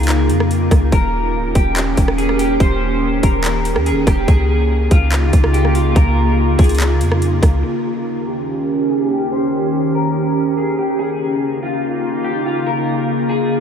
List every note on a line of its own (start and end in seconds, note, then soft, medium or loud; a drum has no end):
0.00 0.31 C#2 loud
0.00 0.89 C#3 medium
0.00 4.24 A#3 medium
0.00 0.89 D#4 medium
0.00 0.89 F4 medium
0.00 0.46 G#4 medium
0.00 closed hi-hat medium
0.09 clap loud
0.09 closed hi-hat medium
0.29 0.69 F2 loud
0.29 closed hi-hat medium
0.40 cross-stick loud
0.51 closed hi-hat medium
0.71 0.91 C#2 loud
0.71 kick loud
0.71 cross-stick loud
0.71 closed hi-hat medium
0.92 1.36 D#1 loud
0.92 4.25 D#3 medium
0.92 4.25 C#4 medium
0.92 4.25 G4 medium
0.92 1.52 A#4 loud
0.92 kick loud
0.92 closed hi-hat soft
1.34 1.46 C#1 loud
1.45 1.55 D#1 loud
1.55 1.96 D#1 loud
1.55 1.76 G4 medium
1.55 kick loud
1.55 closed hi-hat medium
1.77 clap loud
1.77 closed hi-hat medium
1.97 2.58 D#1 loud
1.97 kick medium
1.97 closed hi-hat medium
2.08 cross-stick loud
2.18 2.38 G#4 medium
2.18 closed hi-hat medium
2.29 cross-stick medium
2.39 2.59 G4 medium
2.39 closed hi-hat medium
2.60 3.21 D#1 loud
2.60 3.20 C5 loud
2.60 kick loud
2.60 closed hi-hat soft
3.23 3.77 D#1 loud
3.23 3.83 A#4 medium
3.23 kick loud
3.23 closed hi-hat medium
3.44 clap loud
3.44 closed hi-hat medium
3.65 closed hi-hat medium
3.76 3.93 D#2 loud
3.76 cross-stick loud
3.86 4.06 G#4 medium
3.86 closed hi-hat medium
3.91 4.06 D#1 loud
4.07 4.27 D#1 loud
4.07 4.27 G4 medium
4.07 kick loud
4.07 cross-stick loud
4.07 closed hi-hat medium
4.28 4.88 C#2 loud
4.28 7.60 C#3 medium
4.28 7.60 A#3 medium
4.28 7.60 D#4 medium
4.28 7.60 F4 loud
4.28 4.87 G#4 loud
4.28 kick loud
4.28 closed hi-hat soft
4.91 5.31 C#2 loud
4.91 5.11 F4 medium
4.91 kick loud
4.91 closed hi-hat medium
5.12 clap loud
5.12 closed hi-hat medium
5.33 5.94 C#2 loud
5.33 kick medium
5.33 closed hi-hat medium
5.44 cross-stick loud
5.53 5.74 G4 medium
5.53 closed hi-hat medium
5.65 cross-stick medium
5.75 5.95 F4 medium
5.75 closed hi-hat medium
5.95 6.56 C#2 loud
5.95 6.55 A#4 loud
5.95 kick loud
5.95 closed hi-hat soft
6.58 7.02 C#2 loud
6.58 7.18 G#4 medium
6.58 kick loud
6.58 closed hi-hat medium
6.58 open hi-hat medium
6.64 closed hi-hat medium
6.69 closed hi-hat medium
6.75 closed hi-hat medium
6.80 clap loud
6.80 closed hi-hat medium
7.01 7.41 F2 loud
7.01 closed hi-hat medium
7.12 cross-stick loud
7.22 closed hi-hat medium
7.43 7.63 C#2 loud
7.43 kick loud
7.43 cross-stick loud
7.43 closed hi-hat medium
7.63 10.96 D#2 medium
7.63 10.96 D#3 medium
7.63 10.96 C#4 medium
7.63 10.96 G4 medium
7.63 8.23 A#4 loud
8.27 8.47 G4 medium
8.90 9.10 G#4 medium
9.11 9.31 G4 medium
9.32 9.91 C5 loud
9.95 10.54 A#4 medium
10.58 10.77 G#4 medium
10.79 10.98 G4 medium
10.99 13.60 C#3 medium
10.99 13.60 A#3 medium
10.99 13.60 D#4 medium
10.99 13.60 F4 medium
10.99 11.58 G#4 medium
11.63 11.82 F4 medium
12.24 12.45 G4 medium
12.46 12.66 F4 medium
12.66 13.26 A#4 medium
13.29 13.60 G#4 medium